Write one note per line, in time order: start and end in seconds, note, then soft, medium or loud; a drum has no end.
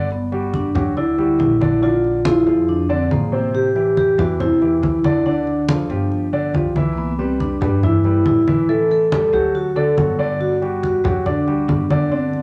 0.00 0.69 G1 loud
0.11 0.51 B3 medium
0.11 high conga soft
0.32 0.67 G3 medium
0.32 0.67 F#4 medium
0.32 0.68 G4 medium
0.32 high conga soft
0.54 0.98 D4 medium
0.54 high conga medium
0.75 1.35 D2 medium
0.75 0.92 F#3 medium
0.75 0.93 F#4 medium
0.75 0.93 G4 medium
0.75 high conga soft
0.75 low conga medium
0.96 1.14 D3 medium
0.96 1.14 D4 medium
0.96 1.37 E4 medium
0.96 1.14 D5 medium
0.96 high conga soft
1.18 1.53 G3 medium
1.18 1.53 F#4 medium
1.18 1.53 G4 medium
1.18 high conga soft
1.39 2.40 A#1 medium
1.39 1.84 E4 medium
1.39 high conga medium
1.61 1.78 D3 medium
1.61 1.79 D4 medium
1.61 1.79 D5 medium
1.61 high conga medium
1.82 2.17 D3 medium
1.82 2.18 D4 medium
1.82 2.23 F4 loud
1.82 2.18 D5 medium
1.82 high conga soft
2.04 high conga soft
2.25 2.43 F3 medium
2.25 2.70 E4 medium
2.25 2.43 F4 medium
2.25 2.43 G#4 medium
2.25 high conga medium
2.46 3.07 F2 medium
2.46 2.82 F3 medium
2.46 2.82 F4 medium
2.46 2.82 G#4 medium
2.46 high conga soft
2.68 2.89 D4 medium
2.68 high conga soft
2.89 3.07 D3 medium
2.89 3.00 C4 medium
2.89 3.07 D4 medium
2.89 3.07 D5 medium
2.89 high conga soft
3.11 4.12 A1 medium
3.11 3.28 F3 medium
3.11 3.41 A#3 medium
3.11 3.29 F4 medium
3.11 3.29 G#4 medium
3.11 high conga medium
3.32 3.68 C3 medium
3.32 3.68 C4 medium
3.32 3.68 C5 medium
3.54 3.96 G4 loud
3.54 high conga soft
3.75 4.11 E3 medium
3.75 4.11 E4 medium
3.75 4.11 G4 medium
3.75 high conga soft
3.97 4.19 G4 medium
3.97 high conga medium
4.18 4.79 E2 medium
4.18 4.36 E3 medium
4.18 4.36 E4 medium
4.18 4.29 F#4 medium
4.18 4.36 G4 medium
4.18 high conga soft
4.18 low conga medium
4.40 4.57 C3 medium
4.40 4.58 C4 medium
4.40 5.29 E4 medium
4.40 4.58 C5 medium
4.40 high conga soft
4.40 low conga medium
4.61 4.97 E3 medium
4.61 4.97 E4 medium
4.61 4.97 G4 medium
4.61 high conga soft
4.83 5.84 D2 medium
4.83 high conga medium
5.04 5.22 D3 medium
5.04 5.22 D4 medium
5.04 5.22 D5 medium
5.04 high conga medium
5.26 5.61 D3 medium
5.26 6.50 D4 medium
5.26 5.61 D4 medium
5.26 5.61 D5 medium
5.26 high conga soft
5.47 high conga soft
5.68 5.86 F3 medium
5.68 5.86 F4 medium
5.68 5.86 A4 medium
5.68 high conga medium
5.90 6.50 G1 medium
5.90 6.25 F3 medium
5.90 6.25 F4 medium
5.90 6.26 G4 medium
5.90 high conga soft
6.12 high conga soft
6.33 6.50 D3 medium
6.33 6.51 D4 medium
6.33 6.51 D5 medium
6.33 high conga soft
6.54 7.55 C2 medium
6.54 6.72 F3 medium
6.54 6.72 F4 medium
6.54 6.72 G4 medium
6.54 high conga medium
6.76 7.11 E3 medium
6.76 7.11 E4 medium
6.76 7.11 E5 medium
6.76 high conga medium
6.93 6.98 A#3 medium
6.97 7.18 B3 medium
6.97 high conga soft
7.19 7.54 G3 medium
7.19 7.29 C4 medium
7.19 7.54 G4 medium
7.19 7.54 B4 medium
7.19 high conga soft
7.40 7.85 D4 medium
7.40 high conga medium
7.61 8.21 G2 medium
7.61 7.79 G3 medium
7.61 7.79 G4 medium
7.61 7.79 B4 medium
7.61 high conga soft
7.61 low conga medium
7.83 8.00 E3 medium
7.83 8.01 E4 medium
7.83 8.25 E4 medium
7.83 8.01 E5 medium
7.83 high conga soft
7.83 low conga medium
8.04 8.40 G3 medium
8.04 8.40 G4 medium
8.04 8.40 B4 medium
8.04 high conga soft
8.26 9.27 A2 medium
8.26 8.66 E4 medium
8.26 high conga medium
8.47 8.65 E3 medium
8.47 8.65 E4 medium
8.47 8.65 E5 medium
8.47 high conga medium
8.69 9.04 E3 medium
8.69 9.04 E4 medium
8.69 8.89 A4 loud
8.69 9.04 E5 medium
8.69 high conga soft
8.91 9.35 A4 loud
8.91 high conga soft
9.11 9.29 G3 medium
9.11 9.29 G4 medium
9.11 9.29 A4 medium
9.11 high conga medium
9.33 9.93 D2 medium
9.33 9.68 F#3 medium
9.33 9.68 F#4 medium
9.33 9.53 G4 medium
9.33 9.69 A4 medium
9.33 high conga soft
9.55 9.77 F#4 loud
9.55 high conga soft
9.76 9.93 D3 medium
9.76 9.94 D4 medium
9.76 10.16 A4 loud
9.76 9.94 D5 medium
9.76 high conga soft
9.97 10.98 G1 medium
9.97 10.15 F#3 medium
9.97 10.15 F#4 medium
9.97 10.15 A4 medium
9.97 high conga medium
10.19 10.54 D3 medium
10.19 10.54 D4 medium
10.19 10.54 D5 medium
10.41 10.80 F#4 loud
10.41 high conga soft
10.61 10.97 G3 medium
10.61 10.97 F#4 medium
10.61 10.97 G4 medium
10.61 high conga soft
10.83 11.23 F#4 medium
10.83 high conga medium
11.04 11.64 D2 medium
11.04 11.22 F#3 medium
11.04 11.22 F#4 medium
11.04 11.22 G4 medium
11.04 high conga soft
11.04 low conga medium
11.26 11.43 D3 medium
11.26 11.43 D4 medium
11.26 11.66 D4 medium
11.26 11.44 D5 medium
11.26 high conga soft
11.26 low conga medium
11.47 11.82 G3 medium
11.47 11.83 F#4 medium
11.47 11.83 G4 medium
11.47 high conga soft
11.68 12.42 G1 medium
11.68 12.08 D4 medium
11.68 high conga medium
11.90 12.08 D3 medium
11.90 12.08 D4 medium
11.90 12.08 D5 medium
11.90 high conga medium
12.12 12.42 D3 medium
12.12 12.42 C4 medium
12.12 12.42 D4 medium
12.12 12.42 D5 medium
12.12 high conga soft
12.33 high conga soft